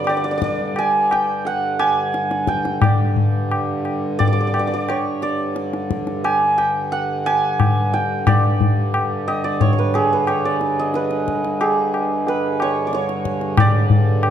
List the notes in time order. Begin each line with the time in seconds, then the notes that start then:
Already playing: G2 D3 B4
0.04 D5, tabla na
0.09 D5
0.17 D5
0.24 D5
0.31 D5
0.38 D5
0.42 D5, tabla ke
0.76 G#5, tabla na
1.11 G5, tabla na
1.45 F#5, tabla tin
1.79 G#5, tabla na
2.14 tabla te
2.31 tabla te
2.47 G5, tabla ke
2.65 tabla te
2.82 G2 D3 D5, tabla na, tabla ge
3.17 tabla ge
3.51 tabla na
3.85 tabla na
4.19 D5, tabla tin, tabla ge
4.27 D5
4.33 D5
4.41 D5
4.47 D5
4.54 D5, tabla na
4.59 D5
4.67 D5
4.74 D5
4.89 C#5, tabla na
5.22 D5, tabla te
5.56 tabla te
5.74 tabla te
5.91 tabla ke
6.07 tabla te
6.24 G#5, tabla na
6.58 G5, tabla na
6.92 F#5, tabla tin
7.26 G#5, tabla na
7.60 tabla na, tabla ge
7.94 G5, tabla te
8.27 D5, tabla na, tabla ge
8.61 tabla ge
8.94 tabla na
9.28 D#5, tabla na
9.44 D5
9.61 C#5, tabla tin, tabla ge
9.73 C#5
9.79 B4
9.94 G#4, tabla na
10.13 B4
10.27 C#5, tabla na
10.45 D5
10.61 tabla te
10.79 D#5
10.94 B4, tabla te
11.11 tabla te
11.28 tabla ke
11.44 tabla te
11.61 G#4, tabla na
11.94 tabla na
12.27 B4, tabla tin
12.60 C#5, tabla na
12.87 D5
12.93 C#5, tabla te
13.09 tabla te
13.25 tabla ke
13.41 tabla te
13.57 G2 D3 D5, tabla na, tabla ge
13.90 tabla ge
14.23 tabla na